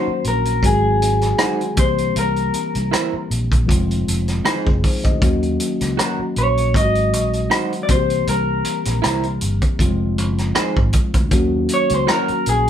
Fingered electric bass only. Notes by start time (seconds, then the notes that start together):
0.07 muted fingered electric bass stroke
0.25 A#1
0.63 G#1
1.78 C2
2.16 C2
2.75 C2
3.13 muted fingered electric bass stroke
3.31 A#1
3.69 F1
4.08 F1
4.67 F#1
5.05 D2
5.22 D#2
5.81 C#2
6.19 muted fingered electric bass stroke
6.37 A#1
6.75 G#1
7.13 A#1
7.89 C2
8.28 C2
8.86 A#1
9.05 C2
9.42 G1
9.79 F1
10.18 F#1
10.77 G#1
11.14 D2
11.32 D#2
11.91 C#2
12.29 muted fingered electric bass stroke
12.47 A#1